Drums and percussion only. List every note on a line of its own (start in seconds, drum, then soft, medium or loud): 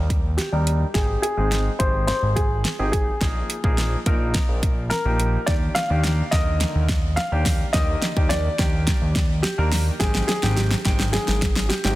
0.10 kick medium
0.10 closed hi-hat medium
0.38 snare medium
0.38 closed hi-hat medium
0.67 closed hi-hat medium
0.95 kick loud
0.95 snare medium
0.95 closed hi-hat medium
1.23 closed hi-hat medium
1.52 snare medium
1.52 closed hi-hat medium
1.80 kick medium
1.80 closed hi-hat medium
2.08 snare medium
2.08 closed hi-hat medium
2.37 kick medium
2.37 closed hi-hat medium
2.65 snare medium
2.65 closed hi-hat medium
2.93 kick loud
2.93 closed hi-hat medium
3.21 kick loud
3.21 snare medium
3.21 closed hi-hat medium
3.50 closed hi-hat medium
3.64 kick medium
3.78 snare medium
3.78 closed hi-hat medium
4.06 kick loud
4.06 closed hi-hat medium
4.34 kick medium
4.34 snare medium
4.34 closed hi-hat medium
4.63 kick medium
4.63 closed hi-hat medium
4.91 snare medium
4.91 closed hi-hat medium
5.20 closed hi-hat medium
5.48 kick loud
5.48 snare medium
5.48 closed hi-hat medium
5.76 snare medium
5.76 closed hi-hat medium
6.04 snare medium
6.04 closed hi-hat medium
6.32 kick medium
6.32 snare medium
6.32 closed hi-hat medium
6.61 snare medium
6.61 closed hi-hat medium
6.89 kick loud
6.89 snare medium
6.89 closed hi-hat medium
7.17 snare medium
7.17 closed hi-hat medium
7.46 kick medium
7.46 snare medium
7.46 open hi-hat medium
7.74 kick loud
7.74 snare medium
7.74 closed hi-hat medium
8.02 snare medium
8.02 closed hi-hat medium
8.17 kick loud
8.31 snare loud
8.31 closed hi-hat medium
8.59 kick loud
8.59 snare medium
8.59 closed hi-hat medium
8.87 kick medium
8.87 snare medium
8.87 closed hi-hat medium
9.16 kick loud
9.16 snare loud
9.16 closed hi-hat medium
9.44 snare loud
9.44 closed hi-hat medium
9.72 snare loud
9.72 open hi-hat loud
10.01 kick loud
10.01 snare loud
10.01 closed hi-hat medium
10.15 snare loud
10.29 snare loud
10.29 closed hi-hat medium
10.43 snare loud
10.57 snare loud
10.57 closed hi-hat medium
10.71 snare loud
10.85 kick loud
10.85 snare loud
10.85 closed hi-hat medium
11.00 snare loud
11.14 snare loud
11.14 closed hi-hat medium
11.28 snare loud
11.42 kick loud
11.42 snare loud
11.42 closed hi-hat medium
11.56 snare loud
11.70 snare loud
11.70 closed hi-hat medium
11.85 snare loud